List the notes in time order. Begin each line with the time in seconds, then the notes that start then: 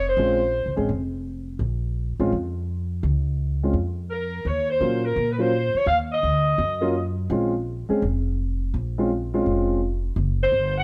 Already playing: F1
0.08 C5
0.17 A#1 G#3 C4 C#4 F4
0.66 C2
0.76 A1 G#3 C4 C#4 G#4
0.89 F1
1.59 A#1
2.19 A1 G#3 C4 C#4 F4
2.32 F2
3.03 C#2
3.63 G#3 C4 C#4 F4
3.73 F2
4.10 A#4
4.45 D#2 C#5
4.70 C5
4.80 A#2 F#3 A#3 C#4 F4
5.05 A#4
5.16 A#2
5.31 B4
5.38 F#3 A#3 C#4 F4 C5
5.74 C#5, muted upright bass stroke
5.86 D#2 F5
6.12 D#5
6.23 D2
6.58 F#2
6.81 F#3 A#3 C#4 F4
7.30 A#1 G#3 C4 C#4 F4
7.89 G#3 C4 C#4 G#4, muted upright bass stroke
8.02 F1
8.74 A#1
8.98 G#3 C4 C#4 F4
9.34 G#3 C4 C#4 F4
9.46 F1
10.16 F#1
10.42 C5
10.52 G1
10.78 F#5